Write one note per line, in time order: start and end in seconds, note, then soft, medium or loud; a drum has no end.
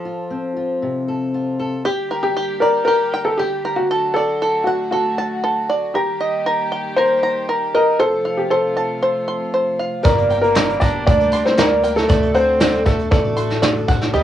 0.00 1.85 F3 medium
0.00 1.07 A4 soft
0.05 0.55 F4 soft
0.30 1.82 C4 soft
0.56 1.33 F4 soft
0.82 1.85 C3 soft
1.08 1.58 A4 soft
1.34 1.83 F4 soft
1.59 1.82 A4 soft
1.85 5.92 D3 medium
1.85 3.89 G3 medium
1.85 3.89 A#3 medium
1.85 2.36 G4 loud
1.85 2.21 G4 medium
1.85 3.89 G4 medium
2.11 3.14 A#4 medium
2.23 2.63 G4 loud
2.37 2.87 G4 medium
2.60 2.83 A#4 loud
2.60 3.65 D5 medium
2.85 3.38 G4 medium
2.85 3.26 A#4 loud
3.14 3.91 G5 medium
3.25 3.39 A4 loud
3.38 3.78 G4 loud
3.38 3.91 G4 medium
3.65 3.90 A#4 medium
3.76 4.17 F#4 loud
3.91 5.94 F#3 medium
3.91 5.94 A3 medium
3.91 5.94 F#4 medium
3.91 4.41 A4 loud
4.14 4.68 A4 loud
4.14 5.18 D5 medium
4.42 4.91 A4 medium
4.64 4.89 F#4 medium
4.64 5.70 F#5 medium
4.91 5.65 F#4 medium
4.91 5.42 A4 medium
5.18 5.95 A5 medium
5.44 5.95 A4 medium
5.69 5.95 D5 medium
5.94 7.98 D#3 medium
5.94 7.98 G3 medium
5.94 7.98 A#3 medium
5.94 7.00 G4 medium
5.94 7.98 G4 loud
5.94 6.45 A#4 medium
6.21 7.23 D#5 medium
6.46 6.96 A#4 medium
6.72 7.74 G5 medium
6.96 7.48 A#4 medium
6.96 7.45 C5 loud
7.23 8.00 A#5 loud
7.49 7.99 A#4 medium
7.75 7.98 A#4 loud
7.75 8.00 D#5 medium
7.99 10.03 C3 medium
7.99 10.03 F3 medium
7.99 10.02 A3 medium
7.99 10.02 F4 medium
7.99 8.39 A4 loud
7.99 8.50 C5 loud
8.25 9.28 F5 medium
8.37 8.51 G4 medium
8.50 9.75 A4 loud
8.50 9.01 C5 medium
8.77 9.79 A5 medium
9.03 9.53 C5 medium
9.28 10.05 C6 medium
9.54 10.05 C5 medium
9.79 10.04 F5 medium
10.03 11.03 G1 loud
10.03 10.29 G2 medium
10.03 10.30 D3 medium
10.03 12.08 D3 medium
10.03 10.28 G3 medium
10.03 12.08 G3 medium
10.03 10.39 A#3 medium
10.03 10.29 A#3 medium
10.03 12.08 A#3 medium
10.03 10.29 D4 medium
10.03 12.08 G4 medium
10.03 10.40 A#4 loud
10.03 10.30 A#4 loud
10.03 10.55 D5 loud
10.03 kick loud
10.03 closed hi-hat medium
10.03 tambourine medium
10.18 closed hi-hat soft
10.29 10.54 G3 medium
10.29 10.55 A#3 medium
10.29 10.55 D4 medium
10.29 10.55 A#4 medium
10.29 11.33 G5 medium
10.29 closed hi-hat medium
10.29 tambourine soft
10.42 10.78 A#3 medium
10.42 10.78 A#4 loud
10.42 closed hi-hat soft
10.55 10.81 G2 medium
10.55 10.81 D3 medium
10.55 10.80 G3 medium
10.55 10.81 A#3 medium
10.55 10.81 D4 loud
10.55 10.82 A#4 medium
10.55 11.06 D5 medium
10.55 snare loud
10.55 clap loud
10.55 closed hi-hat loud
10.55 tambourine medium
10.69 closed hi-hat soft
10.80 11.20 G3 medium
10.80 11.20 A#3 medium
10.80 11.05 D4 medium
10.80 11.19 D4 medium
10.80 11.19 A#4 medium
10.80 11.05 D5 loud
10.80 11.32 A#5 medium
10.80 kick medium
10.80 closed hi-hat medium
10.80 tambourine medium
11.07 12.06 D2 loud
11.07 11.42 D4 medium
11.07 11.42 D5 loud
11.07 11.57 D5 medium
11.07 kick loud
11.07 closed hi-hat loud
11.07 tambourine soft
11.20 11.31 G3 soft
11.20 11.32 A#3 soft
11.20 11.32 D4 medium
11.20 11.33 A#4 medium
11.20 closed hi-hat soft
11.32 11.45 G3 medium
11.32 11.45 A#3 medium
11.32 11.45 D4 medium
11.32 11.44 A#4 medium
11.32 12.09 C6 medium
11.32 closed hi-hat medium
11.32 tambourine medium
11.45 11.57 G3 soft
11.45 11.57 A#3 soft
11.45 11.56 C4 medium
11.45 11.57 D4 medium
11.45 11.57 A#4 medium
11.45 11.59 C5 loud
11.45 snare soft
11.57 11.83 G2 medium
11.57 11.84 D3 medium
11.57 11.81 G3 medium
11.57 11.93 A#3 medium
11.57 11.82 A#3 medium
11.57 11.83 D4 medium
11.57 11.97 A#4 loud
11.57 11.84 A#4 medium
11.57 12.08 D5 medium
11.57 snare loud
11.57 clap loud
11.57 closed hi-hat loud
11.57 tambourine loud
11.83 11.96 G3 medium
11.83 11.95 A#3 medium
11.83 11.95 D4 medium
11.83 11.94 A#4 medium
11.83 12.09 G5 medium
11.83 closed hi-hat medium
11.83 tambourine medium
11.95 12.09 G3 medium
11.95 12.32 A3 medium
11.95 12.09 A#3 medium
11.95 12.08 D4 medium
11.95 12.36 A4 loud
11.95 12.09 A#4 medium
11.95 snare soft
12.08 13.08 D2 loud
12.08 12.34 D3 medium
12.08 12.33 A3 medium
12.08 12.34 D4 medium
12.08 12.34 F#4 medium
12.08 12.35 A4 medium
12.08 12.59 D5 loud
12.08 kick loud
12.08 closed hi-hat medium
12.08 tambourine medium
12.23 closed hi-hat soft
12.34 12.59 A3 medium
12.34 12.82 C4 medium
12.34 12.60 D4 medium
12.34 12.60 F#4 medium
12.34 12.60 A4 medium
12.34 12.83 C5 loud
12.34 13.37 F#5 medium
12.34 closed hi-hat medium
12.34 tambourine soft
12.60 12.86 D3 medium
12.60 12.85 A3 medium
12.60 12.85 D4 medium
12.60 12.86 F#4 medium
12.60 12.86 A4 loud
12.60 13.10 D5 medium
12.60 snare loud
12.60 closed hi-hat medium
12.60 tambourine loud
12.73 closed hi-hat soft
12.86 12.99 A3 medium
12.86 13.10 A3 medium
12.86 12.99 D4 medium
12.86 12.99 F#4 medium
12.86 13.10 A4 medium
12.86 12.98 A4 medium
12.86 13.88 A5 medium
12.86 kick medium
12.86 closed hi-hat medium
12.86 tambourine medium
12.99 13.25 D4 soft
12.99 13.24 F#4 soft
12.99 13.23 A4 medium
12.99 closed hi-hat soft
13.11 14.10 A1 loud
13.11 13.84 A3 medium
13.11 13.84 A4 medium
13.11 13.61 D5 medium
13.11 kick loud
13.11 closed hi-hat medium
13.11 tambourine soft
13.25 13.36 D4 soft
13.25 13.37 F#4 medium
13.25 13.37 A4 medium
13.37 13.62 A3 medium
13.37 13.62 D4 medium
13.37 13.62 F#4 medium
13.37 13.63 A4 medium
13.37 14.14 C6 medium
13.37 closed hi-hat medium
13.37 tambourine medium
13.50 snare soft
13.62 13.88 D3 medium
13.62 13.87 A3 medium
13.62 13.89 D4 medium
13.62 13.89 F#4 loud
13.62 13.89 A4 medium
13.62 14.13 D5 medium
13.62 snare loud
13.62 closed hi-hat medium
13.62 tambourine loud
13.76 closed hi-hat soft
13.88 14.01 A3 medium
13.88 14.02 D4 medium
13.88 14.02 F#4 medium
13.88 14.00 A4 medium
13.88 14.14 F#5 medium
13.88 kick medium
13.88 closed hi-hat medium
13.88 tambourine medium
14.01 14.15 D4 medium
14.01 14.15 F#4 medium
14.01 14.14 A4 medium
14.01 snare soft
14.13 14.23 D#2 loud
14.13 14.23 D#3 medium
14.13 14.23 G3 medium
14.13 14.23 A#3 medium
14.13 14.23 D#4 loud
14.13 14.23 G4 loud
14.13 14.23 D#5 loud